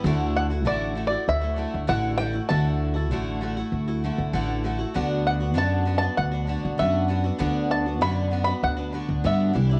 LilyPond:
<<
  \new Staff \with { instrumentName = "Five-string banjo" } { \time 4/4 \key b \phrygian \tempo 4 = 98 r8 fis''8 \tuplet 3/2 { d''4 d''8 } e''4 fis''8 g''8 | a''4 r2. | r8 fis''8 \tuplet 3/2 { a''4 a''8 } fis''4 e''8 r8 | r8 a''8 \tuplet 3/2 { b''4 b''8 } fis''4 e''8 r8 | }
  \new Staff \with { instrumentName = "Twelve-string acoustic guitar" } { \time 4/4 \key b \phrygian <d a e' fis'>8. <a e' fis'>16 <d a e' fis'>8 <d a e' fis'>16 <a e' fis'>8 <a e' fis'>16 <d a e' fis'>8 <d a e' fis'>8 <d a e' fis'>16 <a e' fis'>16 | <d a e' fis'>8. <a e' fis'>16 <d a e' fis'>8 <d a e' fis'>16 <a e' fis'>8 <a e' fis'>16 <d a e' fis'>8 <d a e' fis'>8 <d a e' fis'>16 <a e' fis'>16 | <d b d' fis'>8. <b d' fis'>16 <d b d' fis'>8 <d b d' fis'>16 <b d' fis'>8 <b d' fis'>16 <d b d' fis'>8 <d b d' fis'>8 <d b d' fis'>16 <b d' fis'>16 | <d b d' fis'>8. <b d' fis'>16 <d b d' fis'>8 <d b d' fis'>16 <b d' fis'>8 <b d' fis'>16 <d b d' fis'>8 <d b d' fis'>8 <e g d' e'>16 <g d' e'>16 | }
  \new Staff \with { instrumentName = "Upright bass" } { \clef bass \time 4/4 \key b \phrygian d,4 a,,4 d,8. d,16 a,,4 | d,4 a,,4 d,8. d,16 a,,4 | d,4 fis,4 d,8. d,16 fis,4 | d,4 fis,4 d,8. d,16 g,8 c,8 | }
>>